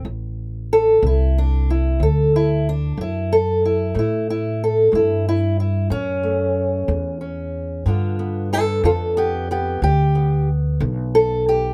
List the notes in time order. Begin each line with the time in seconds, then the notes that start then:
0.05 A1 D2
0.73 A4
1.03 C2 D3 E4
1.38 D4
1.70 E4
2.00 D2 A4
2.36 E4
2.69 D4
2.97 F#2 D3 E4
3.33 A4
3.65 E4
3.95 A2 A3
3.99 E4
4.30 E4
4.64 A4
4.92 G2 A3 E4
5.29 E4
5.60 E4
5.90 F#2 A2 C#4
6.23 A3
6.88 E2 A3
7.21 C#4
7.86 G2 D3 B3 D4 F4
8.19 B3
8.53 F4 A4
8.84 F2 D3 F4 A4
9.17 B3 G4
9.51 B3 G4
9.82 D2 G2 G4
10.15 B3
10.80 B1 D3
11.15 A4
11.49 G4